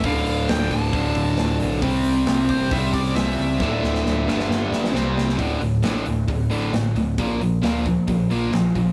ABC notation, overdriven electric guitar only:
X:1
M:4/4
L:1/8
Q:1/4=134
K:Dm
V:1 name="Overdriven electric guitar" clef=bass
[D,,A,,D,]4 [D,,A,,D,]4 | [C,G,C]4 [C,G,C]4 | [D,,A,,D,]3 [G,,D,G,]3 [C,G,C]2 | [D,,A,,D,] [D,,A,,] [D,,A,,D,] [D,,A,,] [D,,A,,] [D,,A,,D,] [D,,A,,] [D,,A,,] |
[B,,F,B,] [B,,F,] [B,,F,B,] [B,,F,] [B,,F,] [B,,F,B,] [B,,F,] [B,,F,] |]